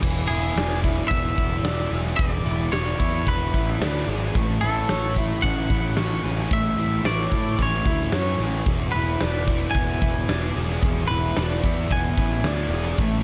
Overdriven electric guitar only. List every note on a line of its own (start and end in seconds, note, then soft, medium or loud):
0.02 1.67 E3 medium
0.29 0.83 E4 medium
0.58 1.63 D5 medium
0.84 1.36 E4 medium
1.10 2.45 B3 medium
1.37 2.45 E4 medium
1.64 2.71 D5 medium
1.92 3.84 G#4 medium
2.19 3.84 E3 medium
2.45 2.99 E4 medium
2.72 3.79 D5 medium
2.99 3.53 E4 medium
3.26 4.35 B3 medium
3.54 4.63 E4 medium
3.81 4.35 D5 medium
4.09 4.40 G#4 medium
4.37 5.71 A3 medium
4.64 5.17 E4 medium
4.89 5.96 C#5 medium
5.18 5.70 E4 medium
5.43 6.78 C#4 medium
5.70 6.78 E4 medium
5.97 7.06 C#5 medium
6.24 8.41 G#4 medium
6.52 7.87 A3 medium
6.79 7.34 E4 medium
7.07 8.13 C#5 medium
7.35 7.86 E4 medium
7.60 8.68 C#4 medium
7.87 8.95 E4 medium
8.14 8.68 C#5 medium
8.42 9.25 G#4 medium
8.69 10.31 E3 medium
8.96 9.50 E4 medium
9.22 10.27 D5 medium
9.50 10.02 E4 medium
9.77 11.11 B3 medium
10.02 11.10 E4 medium
10.28 11.37 D5 medium
10.55 12.50 G#4 medium
10.83 12.50 E3 medium
11.11 11.65 E4 medium
11.38 12.46 D5 medium
11.65 12.19 E4 medium
11.93 12.99 B3 medium
12.19 13.23 E4 medium
12.47 13.00 D5 medium
12.74 13.03 G#4 medium
13.00 13.23 A3 medium